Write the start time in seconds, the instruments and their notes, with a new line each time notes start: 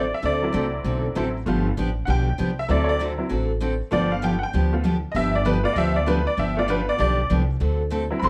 Already playing: upright bass A1, honky-tonk piano F#3 C4 E4 D5
0.14 honky-tonk piano E5
0.22 upright bass D2, steel-string acoustic guitar D3 A3 C4 F#4 A4, honky-tonk piano D5
0.42 honky-tonk piano F#3 C4 E4
0.53 upright bass C2, steel-string acoustic guitar D3 A3 C4 F#4 A4
0.84 upright bass B1, steel-string acoustic guitar D3 A3 C4 F#4 A4
1.15 upright bass A1, steel-string acoustic guitar D3 A3 C4 F#4 A4, honky-tonk piano F#3 C4 E4
1.46 upright bass G1, steel-string acoustic guitar D3 F3 B3 D4 G4, honky-tonk piano A3 B3 F4
1.77 upright bass A1, steel-string acoustic guitar D3 F3 B3 D4 G4
2.05 upright bass B1, steel-string acoustic guitar D3 F3 B3 D4 G4, honky-tonk piano F#5
2.10 honky-tonk piano G5
2.38 upright bass C2, steel-string acoustic guitar D3 F3 B3 D4 G4
2.59 honky-tonk piano E5
2.68 upright bass D2, steel-string acoustic guitar D3 A3 C4 F#4 A4, honky-tonk piano F#3 C4 E4 D5
2.84 honky-tonk piano C#5
2.89 honky-tonk piano D5
3.00 steel-string acoustic guitar D3 A3 C4 F#4 A4
3.18 honky-tonk piano F#3 C4 E4
3.29 upright bass A1, steel-string acoustic guitar D3 A3 C4 F#4 A4
3.60 steel-string acoustic guitar D3 A3 C4 F#4 A4
3.91 upright bass G1, steel-string acoustic guitar D3 F3 B3 D4 G4, honky-tonk piano A3 B3 F4 D5
4.12 honky-tonk piano F5
4.22 steel-string acoustic guitar D3 F3 B3 D4 G4, honky-tonk piano G5
4.39 honky-tonk piano F#5
4.43 honky-tonk piano G5
4.53 upright bass D2, steel-string acoustic guitar D3 F3 B3 D4 G4
4.73 honky-tonk piano A3 B3 F4
4.84 steel-string acoustic guitar D3 F3 B3 D4 G4
5.12 upright bass G1, steel-string acoustic guitar D3 F3 B3 D4, honky-tonk piano D#5
5.16 steel-string acoustic guitar G4, honky-tonk piano E5
5.35 honky-tonk piano D5
5.45 steel-string acoustic guitar D3 F3 B3 D4 G4, honky-tonk piano B4
5.63 honky-tonk piano A3 B3 F4 D5
5.73 upright bass D2, steel-string acoustic guitar D3 F3 B3 D4, honky-tonk piano D#5
5.77 steel-string acoustic guitar G4, honky-tonk piano E5
5.96 honky-tonk piano D5
6.06 steel-string acoustic guitar D3 F3 B3 D4 G4, honky-tonk piano A3 B3 F4 B4
6.27 honky-tonk piano D5
6.37 upright bass G1, steel-string acoustic guitar D3 F3 B3 D4 G4, honky-tonk piano E5
6.57 honky-tonk piano A3 B3 F4 D5
6.68 steel-string acoustic guitar D3 F3 B3 D4 G4, honky-tonk piano B4
6.89 honky-tonk piano D5
6.98 upright bass B1, steel-string acoustic guitar D3 F3 B3 D4 G4, honky-tonk piano D5
7.30 upright bass C2, steel-string acoustic guitar D3 F3 B3 D4 G4
7.60 upright bass D2, steel-string acoustic guitar D3 A3 C4 F#4 A4
7.90 steel-string acoustic guitar D3 A3 C4 F#4 A4
8.10 honky-tonk piano F#3 C4 E4
8.20 upright bass A1, steel-string acoustic guitar D3 A3 C4 F#4 A4, honky-tonk piano B5
8.24 honky-tonk piano C6